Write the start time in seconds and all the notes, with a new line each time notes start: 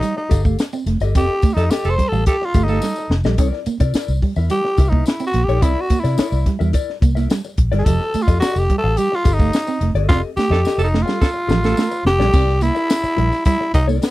Already playing: D#4
0.02 G3, muted clean electric guitar stroke, closed hi-hat, tambourine
0.17 D#4, muted clean electric guitar stroke
0.30 G1 G4 A4 F5, kick, closed hi-hat, tambourine
0.44 A3 G4 A4 F5, kick, tambourine
0.59 muted clean electric guitar stroke, snare, closed hi-hat, tambourine
0.73 C4, muted clean electric guitar stroke, tambourine
0.86 F1 A3, snare, closed hi-hat
1.00 G1 G4 A4 D#5, closed hi-hat, tambourine
1.15 F1 C4 G4 A4 D#5, kick, closed hi-hat, tambourine
1.42 A3, muted fingered electric bass stroke, muted clean electric guitar stroke, kick, closed hi-hat, tambourine
1.54 F2 D#4 A4 D#5, muted clean electric guitar stroke, closed hi-hat, tambourine
1.58 G4 A4, snare
1.70 G4 A4 D#5, muted clean electric guitar stroke, muted fingered electric bass stroke, snare, closed hi-hat, tambourine
1.84 F1 A4, tambourine
1.90 C5
1.98 G3, muted clean electric guitar stroke, kick, snare, closed hi-hat
2.08 A4
2.12 A1 G3 G4 A4 F5, tambourine
2.26 G4 A4, muted clean electric guitar stroke, kick, closed hi-hat, tambourine
2.42 F4, muted clean electric guitar stroke, snare
2.54 G1 A3 G4 A4 F5, kick, closed hi-hat, tambourine
2.64 D#4
2.68 A3 G4 A4 F5, tambourine
2.82 G3, snare, tambourine
2.96 muted clean electric guitar stroke, tambourine
3.10 F1, muted clean electric guitar stroke, snare
3.24 A#1 G3 G4 A4 D#5, snare, tambourine
3.38 C2 C4 E4 A#4 D5, kick, closed hi-hat, tambourine
3.53 muted clean electric guitar stroke, snare
3.66 A#3, muted fingered electric bass stroke, muted clean electric guitar stroke, closed hi-hat, tambourine
3.80 C3 E4 A#4 D5, kick, closed hi-hat, tambourine
3.94 E4 A#4 D5, muted fingered electric bass stroke, snare, closed hi-hat, tambourine
4.08 C2, tambourine
4.22 G3, muted clean electric guitar stroke, kick, open hi-hat
4.36 E2 E4 A#4 E5, tambourine
4.50 G3 G4, muted clean electric guitar stroke, closed hi-hat, tambourine
4.65 muted clean electric guitar stroke, snare
4.77 C2 E4 A#4 E5, kick, closed hi-hat, tambourine
4.89 A#3 D#4 E5, kick
4.94 E4 A#4
5.06 E4, muted clean electric guitar stroke, snare, closed hi-hat, tambourine
5.20 C4, muted clean electric guitar stroke, tambourine
5.27 F#4
5.34 A#1 A#3, snare, closed hi-hat
5.44 G4
5.48 A#1 E4 A#4 D5, closed hi-hat
5.62 C2 C4 E4 A#4 D5, kick, closed hi-hat, tambourine
5.81 F#4
5.90 A#3, muted fingered electric bass stroke, muted clean electric guitar stroke, kick, closed hi-hat, tambourine
6.00 E4 D5
6.04 C3 E4 A#4, muted clean electric guitar stroke, snare, closed hi-hat, tambourine
6.17 E4 A#4 D5, muted fingered electric bass stroke, muted clean electric guitar stroke, snare, closed hi-hat, tambourine
6.32 C2, tambourine
6.46 G3, muted clean electric guitar stroke, kick, snare, closed hi-hat
6.59 E2 G3 E4 A#4 E5, tambourine
6.73 E4 A#4 D5, muted clean electric guitar stroke, kick, closed hi-hat, tambourine
6.90 snare
7.01 C2 A#3, muted clean electric guitar stroke, kick, closed hi-hat, tambourine
7.15 A#3 E4 A#4 E5, snare, tambourine
7.30 G3, muted clean electric guitar stroke, snare, closed hi-hat, tambourine
7.44 muted clean electric guitar stroke, tambourine
7.58 A#1, muted clean electric guitar stroke, kick, closed hi-hat
7.72 G1 G3 E4 A#4 D5, snare, closed hi-hat
7.79 G#4
7.85 F1 F3 G4 A4 D#5, kick, closed hi-hat, tambourine
8.01 muted clean electric guitar stroke, snare
8.14 A3, muted clean electric guitar stroke, muted fingered electric bass stroke, closed hi-hat, tambourine
8.22 F4
8.28 F2 G4 A4 D#5, kick, closed hi-hat, tambourine
8.40 F#4 G4 A4 D#5, muted fingered electric bass stroke, snare, closed hi-hat, tambourine
8.56 F1 G4, tambourine
8.70 G3, muted clean electric guitar stroke, kick, closed hi-hat
8.78 A4
8.84 A1 G4 A4 F5
8.97 G3 G4, muted clean electric guitar stroke, closed hi-hat, tambourine
9.12 F4, muted clean electric guitar stroke, snare
9.25 G1 G4 A4 F5, kick, closed hi-hat, tambourine
9.33 D#4
9.39 A3 G4 A4 F5, kick, tambourine
9.53 muted clean electric guitar stroke, snare, closed hi-hat, tambourine
9.67 C4, muted clean electric guitar stroke, tambourine
9.81 F1 A3, snare, closed hi-hat
9.94 G1 G4 A4 D#5, closed hi-hat
10.09 F1 C4 F4 G4 A4 D#5, kick, snare, tambourine
10.37 A3 G4, muted clean electric guitar stroke, muted fingered electric bass stroke, snare, tambourine
10.50 F2 G4 A4 D#5, muted clean electric guitar stroke, snare
10.64 G4 A4 D#5, muted fingered electric bass stroke, muted clean electric guitar stroke, snare, tambourine
10.78 F1 A4, tambourine
10.84 D#4
10.92 A3, muted clean electric guitar stroke, snare
11.02 F4 F5
11.07 G3 G4 A4, snare, tambourine
11.20 A4, muted clean electric guitar stroke, kick, snare, tambourine
11.34 muted clean electric guitar stroke
11.48 A1 F3 G4 A4 F5, snare, tambourine
11.62 A3 G4 A4 F5, snare, tambourine
11.77 A3, snare, tambourine
11.91 muted clean electric guitar stroke, tambourine
12.05 F1 G4, muted clean electric guitar stroke, snare
12.19 A#1 G3 G4 A4 D#5, snare
12.33 C2 C4 E4 A#4 D5, kick, crash, tambourine
12.48 muted clean electric guitar stroke, snare
12.61 A#3 E4, muted clean electric guitar stroke, closed hi-hat, tambourine
12.75 E4 A#4 E5, tambourine
12.90 snare, closed hi-hat, tambourine
13.03 muted clean electric guitar stroke, muted fingered electric bass stroke, tambourine
13.17 A#1 G3 E4 A#4 E5, closed hi-hat
13.31 muted clean electric guitar stroke, snare, tambourine
13.45 G3 E4, muted clean electric guitar stroke, kick, closed hi-hat, tambourine
13.61 muted clean electric guitar stroke, snare
13.74 C2 D#4, kick, closed hi-hat, tambourine
13.87 A#3 E4 A#4 D5, tambourine
14.02 C4, muted clean electric guitar stroke, snare, closed hi-hat, tambourine